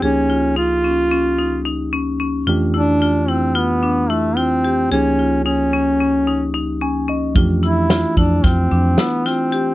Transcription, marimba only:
0.02 0.20 G#4 medium
0.30 0.47 F4 medium
0.56 0.74 D#4 medium
0.84 1.02 C#4 medium
1.11 1.29 C#4 medium
1.38 1.56 D#4 medium
1.65 1.83 D#4 medium
1.93 2.10 C#4 medium
2.20 2.37 C#4 medium
2.47 2.65 F4 medium
2.74 2.92 E4 medium
3.02 3.19 F4 medium
3.28 3.46 E4 medium
3.55 3.73 F4 medium
3.83 4.00 D4 medium
4.10 4.27 E4 medium
4.37 4.54 F4 medium
4.64 4.82 G4 medium
4.92 5.09 G#4 medium
5.19 5.36 F4 medium
5.46 5.63 D#4 medium
5.73 5.91 C#4 medium
6.00 6.18 C#4 medium
6.27 6.45 D#4 medium
6.54 6.72 D#4 medium
6.82 6.99 C#4 medium
7.08 7.26 C#4 medium
7.36 7.53 F4 medium
7.63 7.80 E4 medium
7.91 8.08 F4 medium
8.17 8.35 E4 medium
8.44 8.61 F4 medium
8.71 8.89 D4 medium
8.99 9.16 E4 medium
9.26 9.43 F4 medium
9.52 9.70 G4 medium

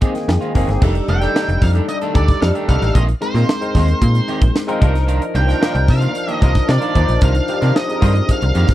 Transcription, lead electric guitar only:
1.10 1.64 G5 loud
1.62 1.69 F5 medium
1.89 1.96 D#5 loud
2.16 2.41 D5 medium
2.42 2.49 F5 loud
2.69 2.94 F5 loud
2.95 3.02 D#5 loud
3.22 4.78 C5 medium
5.36 5.91 G5 loud
5.89 6.32 F5 loud
6.32 6.43 D#5 loud
6.43 6.69 D#5 medium
6.69 7.19 D5 loud
7.23 7.76 F5 loud
7.76 8.31 D#5 medium
8.31 8.74 F5 loud

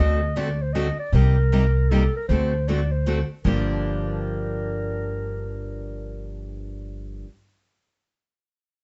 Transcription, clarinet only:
0.00 0.38 D#5 loud
0.37 0.64 D5 medium
0.62 0.75 C5 medium
0.73 0.98 D#5 medium
0.99 1.16 D5 medium
1.15 1.91 A#4 loud
1.90 2.14 A4 medium
2.16 2.28 A#4 medium
2.28 2.69 C5 medium
2.68 2.93 D5 medium
2.91 3.30 C5 medium
3.45 6.52 A#4 medium

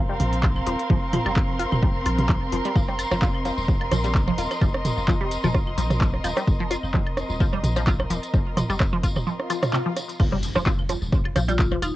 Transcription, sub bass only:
0.00 0.11 D#1 medium
0.09 0.16 F1 loud
0.20 0.61 A#1 medium
0.66 0.75 D#1 medium
0.89 1.19 F1 loud
1.25 1.65 F1 medium
1.72 1.97 D#1 medium
1.95 2.02 F1 loud
2.06 2.28 A#1 medium
2.29 2.37 A#1 loud
2.52 2.61 F1 medium
2.75 3.05 F1 loud
3.11 3.51 F1 medium
3.58 3.83 D#1 medium
3.81 3.88 F1 loud
3.92 4.33 A#1 medium
4.38 4.47 D#1 medium
4.61 4.91 F1 loud
4.97 5.37 F1 medium
5.44 5.69 D#1 medium
5.67 5.74 F1 loud
5.78 6.19 A#1 medium
6.24 6.33 D#1 medium
6.48 6.77 F1 loud
6.84 7.23 F1 medium
7.30 7.55 D#1 medium
7.53 7.60 F1 loud
7.64 8.05 A#1 medium
8.10 8.19 D#1 medium
8.34 8.63 F1 loud
8.69 9.09 F1 medium
9.16 9.27 D#1 medium
10.20 10.49 F1 loud
10.56 10.95 F1 medium
11.02 11.27 D#1 medium
11.25 11.32 F1 loud
11.36 11.77 A#1 medium
11.82 11.91 D#1 medium

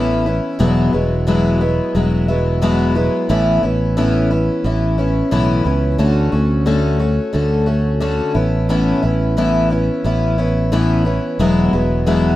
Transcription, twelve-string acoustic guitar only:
0.00 0.26 A2 medium
0.00 0.26 E3 loud
0.00 0.27 B3 loud
0.00 0.26 C#4 medium
0.00 0.25 E4 loud
0.26 0.59 B3 soft
0.26 0.60 C#4 medium
0.26 0.59 E4 medium
0.59 0.93 E2 medium
0.59 0.94 B2 medium
0.59 0.94 F#3 medium
0.59 0.93 G#3 medium
0.59 0.92 B3 medium
0.59 0.91 E4 medium
0.93 1.26 F#3 soft
0.93 1.27 G#3 medium
0.93 1.27 B3 soft
0.93 1.27 E4 medium
1.27 1.61 E2 medium
1.27 1.61 B2 medium
1.27 1.61 F#3 medium
1.27 1.61 G#3 medium
1.27 1.60 B3 medium
1.27 1.59 E4 medium
1.61 1.94 F#3 soft
1.61 1.94 G#3 soft
1.61 1.95 B3 medium
1.61 1.95 E4 medium
1.95 2.29 F#3 medium
1.95 2.28 G#3 medium
1.95 2.28 B3 medium
1.95 2.27 E4 medium
2.28 2.61 F#3 soft
2.28 2.61 G#3 medium
2.28 2.62 B3 medium
2.28 2.62 E4 medium
2.62 2.96 E2 medium
2.62 2.96 B2 medium
2.62 2.96 F#3 loud
2.62 2.95 G#3 loud
2.62 2.95 B3 loud
2.62 2.94 E4 loud
2.95 3.29 F#3 soft
2.95 3.29 G#3 medium
2.95 3.29 B3 medium
2.95 3.29 E4 medium
3.29 3.63 A2 medium
3.29 3.63 E3 medium
3.29 3.64 B3 medium
3.29 3.63 C#4 medium
3.29 3.62 E4 medium
3.63 3.96 B3 soft
3.63 3.97 C#4 soft
3.63 3.97 E4 medium
3.97 4.31 A2 medium
3.97 4.31 E3 medium
3.97 4.31 B3 medium
3.97 4.30 C#4 medium
3.97 4.30 E4 medium
4.31 4.64 B3 soft
4.31 4.65 C#4 medium
4.31 4.65 E4 medium
4.64 4.98 E3 medium
4.64 4.99 B3 medium
4.64 4.98 C#4 medium
4.64 4.97 E4 medium
4.98 5.31 B3 soft
4.98 5.31 C#4 medium
4.98 5.31 E4 medium
5.31 5.65 A2 medium
5.31 5.66 E3 medium
5.31 5.65 B3 medium
5.31 5.65 C#4 loud
5.31 5.63 E4 loud
5.65 5.99 B3 soft
5.65 5.98 C#4 medium
5.65 5.99 E4 medium
5.98 6.33 D3 medium
5.98 6.33 A3 medium
5.98 6.32 C#4 medium
5.98 6.31 F#4 medium
6.32 6.65 A3 soft
6.32 6.66 C#4 soft
6.32 6.66 F#4 medium
6.66 7.00 D3 medium
6.66 7.00 A3 medium
6.66 6.99 C#4 medium
6.66 6.98 F#4 medium
6.99 7.32 A3 soft
6.99 7.33 C#4 medium
6.99 7.33 F#4 medium
7.33 7.67 D3 medium
7.33 7.67 A3 medium
7.33 7.66 C#4 medium
7.33 7.65 F#4 medium
7.66 8.00 A3 soft
7.66 8.00 C#4 medium
7.66 8.01 F#4 medium
8.00 8.35 D3 medium
8.00 8.35 A3 medium
8.00 8.34 C#4 medium
8.00 8.34 F#4 medium
8.34 8.69 B3 soft
8.34 8.69 C#4 soft
8.34 8.69 E4 medium
8.69 9.03 A2 medium
8.69 9.03 E3 medium
8.69 9.04 B3 medium
8.69 9.03 C#4 medium
8.69 9.01 E4 loud
9.03 9.37 B3 soft
9.03 9.37 C#4 soft
9.03 9.37 E4 medium
9.37 9.71 A2 medium
9.37 9.71 E3 medium
9.37 9.71 B3 medium
9.37 9.70 C#4 medium
9.37 9.69 E4 loud
9.70 10.04 B3 medium
9.70 10.04 C#4 medium
9.70 10.04 E4 medium
10.04 10.38 E3 medium
10.04 10.39 B3 medium
10.04 10.38 C#4 medium
10.04 10.37 E4 medium
10.38 10.72 B3 soft
10.38 10.72 C#4 medium
10.38 10.72 E4 medium
10.72 11.06 A2 medium
10.72 11.06 E3 medium
10.72 11.06 B3 loud
10.72 11.05 C#4 loud
10.72 11.04 E4 loud
11.05 11.39 B3 medium
11.05 11.40 C#4 medium
11.05 11.39 E4 medium
11.39 11.73 E2 medium
11.39 11.73 B2 medium
11.39 11.74 F#3 medium
11.39 11.73 G#3 medium
11.39 11.72 B3 loud
11.39 11.72 E4 loud
11.73 12.06 F#3 soft
11.73 12.06 G#3 soft
11.73 12.06 B3 medium
11.73 12.07 E4 medium
12.06 12.36 E2 medium
12.06 12.36 B2 medium
12.06 12.36 F#3 medium
12.06 12.36 G#3 loud
12.06 12.36 B3 loud
12.06 12.36 E4 medium

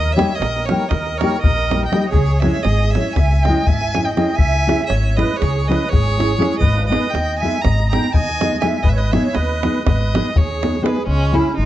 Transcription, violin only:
0.00 0.14 D#5 loud
0.12 0.37 E5 loud
0.35 0.67 D#5 medium
0.65 0.90 C#5 medium
0.89 1.19 D#5 medium
1.17 1.41 C#5 medium
1.41 1.85 D#5 loud
1.86 2.08 G5 medium
2.09 2.41 C#5 medium
2.40 2.65 E5 medium
2.63 2.92 D#5 medium
2.91 3.14 E5 medium
3.13 3.45 G#5 medium
3.43 3.68 G5 medium
3.66 4.06 G#5 loud
4.05 4.13 G5 medium
4.13 4.37 G5 medium
4.35 4.86 G#5 loud
4.86 5.18 E5 medium
5.16 5.38 D#5 medium
5.37 5.69 C#5 medium
5.68 5.91 D#5 medium
5.89 6.58 C#5 loud
6.58 6.86 D#5 loud
6.87 7.12 D#5 medium
7.10 7.38 G5 medium
7.39 7.63 G#5 medium
7.62 7.89 A#5 medium
7.89 8.09 A#5 medium
8.09 8.14 A#5 medium
8.13 8.60 G#5 loud
8.60 8.84 G#5 medium
8.83 8.91 D#5 medium
8.89 8.99 E5 medium
8.98 9.13 D#5 medium
9.12 9.36 E5 medium
9.34 9.86 D#5 medium
9.87 10.39 D#5 medium
10.38 10.86 C#5 medium
10.84 11.06 B4 medium
11.06 11.35 C#4 loud
11.34 11.56 E4 medium
11.57 11.65 D#4 medium

